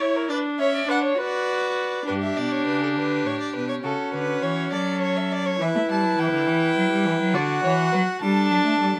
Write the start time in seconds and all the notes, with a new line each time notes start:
Already playing: C#5
0.00 E4 C#5
0.16 A#4
0.29 D4 B4 D5
0.59 C#4 C#5 E5
0.75 D5
0.88 D4 B4 F#5
1.04 C#5
1.17 F#4 B4 D5
2.07 G2 D4 G4 B4
2.22 E5
2.37 B2 D5
2.52 C#5
2.67 C#3 B4
2.83 A4
2.96 D3 B4
3.26 A2 C#5
3.40 D5
3.56 B2 B4
3.69 C#5
3.83 C#3 C#4 F#4 A4
4.13 D3 B4
4.43 E3 C#5
4.72 F#3 A4 D5
5.01 C#5
5.17 E5
5.32 D5
5.45 C#5
5.60 E3 E4 B4 E5
5.75 A3
5.89 G3 A5
6.03 F#3
6.18 E3 G5
6.32 D3
6.47 E3
6.76 F#3
6.91 G3
7.05 E3
7.20 F#3
7.34 D3 F#4 D5 F#5
7.63 E3 C#5
7.92 F#3 B4
8.21 G3 D4 A4 A5
8.51 F#3
8.65 A3
8.80 G3
8.95 F#3